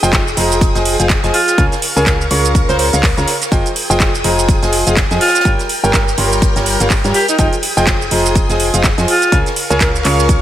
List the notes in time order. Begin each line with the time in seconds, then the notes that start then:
Already playing: G#4 G5 D#6
0.02 F1 F3 F4 G#4 C5 D#5 G5, snare, shaker
0.13 kick, snare, clap, closed hi-hat, shaker
0.28 shaker
0.37 F1 F3 F4 G#4 C5 D#5 A#5, snare, closed hi-hat, open hi-hat
0.51 closed hi-hat, shaker
0.61 kick, closed hi-hat, shaker
0.75 F1 F3 F4 G#4 C5 D#5 G#5, snare, closed hi-hat, shaker
0.85 closed hi-hat, open hi-hat
1.00 F1 F3 F4 G#4 C5 D#5 F5, closed hi-hat, shaker
1.10 kick, snare, clap, closed hi-hat, shaker
1.24 F1 F3 F4 G#4 C5 D#5 G#5, snare, closed hi-hat, shaker
1.34 F4, closed hi-hat, open hi-hat
1.47 snare, closed hi-hat, shaker
1.58 C#2 C#3 F4 G#4 A#4 C#5 F5 G#5 C#6, kick, closed hi-hat, shaker
1.72 snare, closed hi-hat, shaker
1.82 closed hi-hat, open hi-hat
1.96 C#2 C#3 F4 G#4 A#4 C#5 G#5, shaker
2.06 A#4, kick, snare, clap, closed hi-hat, shaker
2.21 shaker
2.31 C#2 C#3 F4 G#4 A#4 C#5 C#6, closed hi-hat, open hi-hat
2.46 shaker
2.55 kick, closed hi-hat, shaker
2.69 C#2 C#3 F4 G#4 A#4 C5 C#5 A#5, snare, closed hi-hat, shaker
2.79 C5, closed hi-hat, open hi-hat
2.93 C#2 C#3 F4 G#4 A#4 C#5 F5, snare, closed hi-hat, shaker
3.03 kick, snare, clap, closed hi-hat, open hi-hat, shaker
3.17 C#2 C#3 F4 G#4 A#4 C#5 A#5, snare, closed hi-hat, shaker
3.28 snare, closed hi-hat, open hi-hat
3.41 snare, closed hi-hat, shaker
3.52 F1 F3 F4 G#4 C5 D#5 G5 D#6, kick, closed hi-hat, shaker
3.66 closed hi-hat, shaker
3.76 closed hi-hat, open hi-hat
3.90 F1 F3 F4 G#4 C5 D#5 G5, snare, shaker
4.00 kick, snare, clap, closed hi-hat, shaker
4.15 shaker
4.24 F1 F3 F4 G#4 C5 D#5 A#5, snare, closed hi-hat, open hi-hat
4.39 closed hi-hat, shaker
4.48 kick, closed hi-hat, shaker
4.63 F1 F3 F4 G#4 C5 D#5 G#5, snare, closed hi-hat, shaker
4.73 closed hi-hat, open hi-hat
4.87 F1 F3 F4 G#4 C5 D#5 F5, closed hi-hat, shaker
4.97 kick, snare, clap, closed hi-hat, shaker
5.11 F2 F3 F4 G#4 C5 D#5 G#5, snare, closed hi-hat, shaker
5.21 F4, snare, closed hi-hat, open hi-hat
5.28 snare, closed hi-hat
5.35 snare, closed hi-hat, shaker
5.40 snare, closed hi-hat
5.45 G1 G3 F4 G4 A#4 C#5 G5 F6, kick, closed hi-hat, shaker
5.59 snare, closed hi-hat, shaker
5.69 closed hi-hat, open hi-hat
5.83 G1 G3 F4 G4 A#4 C#5 G5, shaker
5.93 A#4, kick, snare, clap, closed hi-hat, shaker
6.08 shaker
6.17 G1 G3 F4 G4 A#4 C#5 C6, closed hi-hat, open hi-hat
6.33 shaker
6.42 kick, closed hi-hat, shaker
6.56 G1 G3 F4 G4 A#4 C#5 A#5, snare, closed hi-hat, shaker
6.66 closed hi-hat, open hi-hat
6.80 G1 G3 F4 G4 A#4 C#5 F5, snare, closed hi-hat, shaker
6.90 kick, snare, clap, closed hi-hat, open hi-hat, shaker
7.04 G2 G3 F4 G4 A#4 C#5 A#5, snare, closed hi-hat, shaker
7.14 G4, snare, closed hi-hat, open hi-hat
7.28 D#4, snare, closed hi-hat, shaker
7.38 F1 F3 D#4 F4 G#4 C5 D#5 G5 D#6, kick, closed hi-hat, shaker
7.53 closed hi-hat, shaker
7.63 closed hi-hat, open hi-hat
7.77 F1 F3 F4 G#4 C5 D#5 G5, snare, shaker
7.87 kick, snare, clap, closed hi-hat, shaker
8.02 shaker
8.11 F1 F3 F4 G#4 C5 D#5 A#5, closed hi-hat, open hi-hat
8.25 closed hi-hat, shaker
8.35 kick, closed hi-hat, shaker
8.49 F1 F3 F4 G#4 C5 D#5 G#5, snare, closed hi-hat, shaker
8.60 closed hi-hat, open hi-hat
8.74 F1 F3 F4 G#4 C5 D#5 F5, closed hi-hat, shaker
8.83 kick, snare, clap, closed hi-hat, shaker
8.98 F2 F3 F4 G#4 C5 D#5 G#5, snare, closed hi-hat, shaker
9.08 F4, closed hi-hat, open hi-hat
9.22 snare, closed hi-hat, shaker
9.32 C#2 C#3 F4 G#4 A#4 C#5 F5 G#5 C#6, kick, closed hi-hat, shaker
9.46 snare, closed hi-hat, shaker
9.56 closed hi-hat, open hi-hat
9.70 C#2 C#3 F4 G#4 A#4 C#5 G#5, closed hi-hat, shaker
9.80 A#4, kick, snare, clap, closed hi-hat, shaker
9.95 shaker
10.05 C#2 C#3 F4 G#4 A#4 C#5 C#6, clap, closed hi-hat, open hi-hat
10.19 snare, shaker
10.28 kick, closed hi-hat, shaker